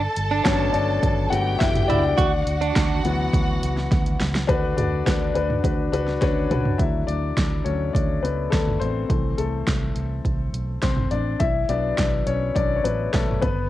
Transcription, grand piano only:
0.44 F#3 A3 B3 C#4 C#5
0.72 D4 D5
1.30 F#3 A3 B3 F#4 F#5
1.59 E4 E5
1.88 D4 D5
3.04 E3 F#3 B3
4.47 D3 D4 F#4 B4
4.76 D4 F#4 D5
5.06 D4 F#4 B4
5.34 D4 F#4 B4
5.63 D4 F#4 B4
5.92 D4 F#4 B4
6.21 C#4 D4 F#4 B4 C#5
6.50 D4 F#4 B4 D5
6.78 F#3 A3 D4 E4 E5
7.07 D4 D5
7.64 F#3 A3 C#4 D4 C#5
7.93 D4 D5
8.23 B3 B4
8.50 A3 A4
8.80 C4 C5
9.09 E3 A3 C4
9.38 A3 A4
10.82 C4 C5
11.11 D4 D5
11.40 E4 E5
11.69 F#3 B3 D4 D5
12.27 C#4 C#5
12.55 D4 D5
12.76 C#5
12.84 F#3 B3 D4 B4
13.13 A3 A4
13.42 B3 B4

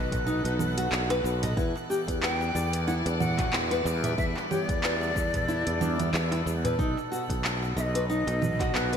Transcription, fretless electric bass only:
Already playing: B1
0.45 B1
0.92 B1
1.24 B1
1.57 E2
2.08 E2
2.55 E2
3.06 E2
3.53 E2
3.85 E2
4.18 E2
4.69 E2
5.16 E2
5.67 E2
6.13 E2
6.46 E2
6.79 B1
7.30 B1
7.76 B1
8.27 B1
8.74 B1

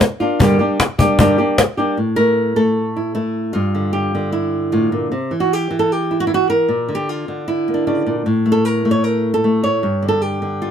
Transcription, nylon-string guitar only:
0.00 muted nylon-string guitar stroke
0.20 A#3 D4 F4
0.40 G2 D3 G3 A#3 D4 G4
0.59 G3 A#3 D4 G4
0.79 muted nylon-string guitar stroke
0.98 G3 A#3 D4 G4
1.18 G2 D3 G3 A#3 D4 G4
1.38 G3 A#3 D4 G4
1.58 muted nylon-string guitar stroke
1.77 G3 A#3 D4 G4
1.97 A2
2.16 A3 A#4
2.56 A3 A4
2.96 E4
3.15 A3 E4
3.53 G2 F4
3.75 D3
3.93 G4
4.15 D3
4.32 E4
4.72 A2 F4
4.92 A#2
5.12 C3
5.31 E3
5.40 F#4
5.53 G4
5.71 E3
5.79 A4
5.92 G4
6.11 E4
6.20 F#4
6.27 E3 E4
6.34 F#4
6.50 A#4
6.69 A#2
6.89 D3
6.95 G4
7.09 F4
7.28 D3
7.48 E4
7.68 A#3
7.74 D4
7.87 C#3 D4
8.06 A#2
8.26 A2
8.46 A3
8.52 A4
8.65 A#4
8.85 A3
8.91 C#5
9.04 A#4
9.34 A4
9.44 A3
9.64 C#5
9.83 G2
10.03 D3
10.09 A4
10.22 G4
10.42 D3
10.62 F4

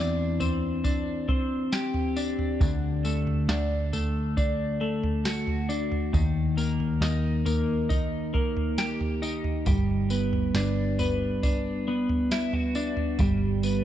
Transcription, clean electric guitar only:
Already playing: E3 C4 D4 G4
0.40 C4
0.84 D4
1.29 C4
1.73 G4
2.17 D4
2.61 D3
3.05 A3
3.49 D4
3.93 A3
4.37 D4
4.81 A3
5.25 F#4
5.69 D4
6.13 D#3
6.57 A#3
7.02 D#4
7.46 A#3
7.89 D#4
8.34 A#3
8.78 G4
9.22 D#4
9.67 G3
10.10 B3
10.55 D4
10.99 B3
11.43 D4
11.88 B3
12.32 E4
12.54 F#4
12.75 D4
13.20 G3
13.64 B3

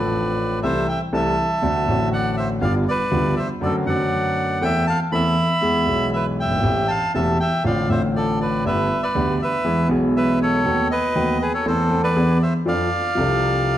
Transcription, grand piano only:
Already playing: A1 A2 F3 C4 D4 A4
0.63 C2 C3 E3 A3 C4 A4
1.12 C2 C3 E3 A3 C4 A4
1.62 D2 D3 A3 C4 F#4
1.86 A1 A2 D3 A3 C4
1.90 F#4
2.61 G1 G2 D3 G3 B3 F4
3.11 D2 D3 G3 B3 F4
3.61 F#2 D3 F#3 A3 C4 F#4
3.85 F#2 D3 F#3 A3 C4 F#4
4.61 E2 E3 A3 C4 A4
5.12 E2 E3 A3 C4 A4
5.61 E2 E3 G#3 B3 G#4
5.85 B1 B2 E3 G#3 B3
5.89 G#4
6.45 F#1
6.51 G1
6.58 G#1
6.63 A1 A2 E3 A3 C4 G4
7.15 E1 E2 E3 A3 C4 G4
7.64 A1 A2 D3 A3 C4 F4
7.88 A1 A2 D3 A3 C4
7.92 F4
8.65 G1 G2 D3 A3 B3 G4
9.15 D2 D3 A3 B3 G4
9.65 E2 E3 G#3 B3 G#4
9.87 B1 B2 E3 G#3 B3
9.91 G#4
10.65 D#2 D#3 A3 B3 F#4
11.15 D#2 D#3 A3 B3 F#4
11.66 E2 E3 A3 C4 A4
11.90 E2 E3 A3 C4 A4
12.16 E2 E3 B3 D4 G#4
12.66 F2 F3 C4 D4 A4
13.15 C2 C3 F3 C4 D4
13.19 A4

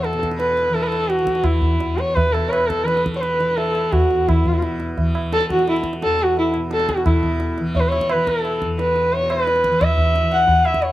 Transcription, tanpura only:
Already playing: E2 B2 E3
0.14 B2
0.69 E3
1.22 E3
1.75 E2
2.28 B2
2.83 E3
3.38 E3
3.92 E2
4.44 B2
4.98 E3
5.51 E3
6.04 E2
6.56 B2
7.07 B2
7.59 E3
8.13 E3
8.64 E2
9.17 B2
9.70 E3
10.21 E3
10.73 E2

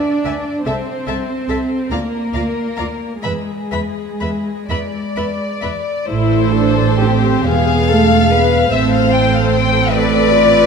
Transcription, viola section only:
0.24 B4 E5
0.66 A4 E5
1.07 A4 E5
1.48 A4 E5
1.91 F4 D5
2.33 F4 D5
2.78 F4 D5
3.24 B4
3.71 B4
4.21 B4
4.69 B4
5.16 B4
5.62 B4
6.08 E4 A4
6.55 D4
7.01 C4
7.46 B3 G#4
7.91 A3
8.33 B3
8.73 C4 A4
9.93 A4
10.32 F4

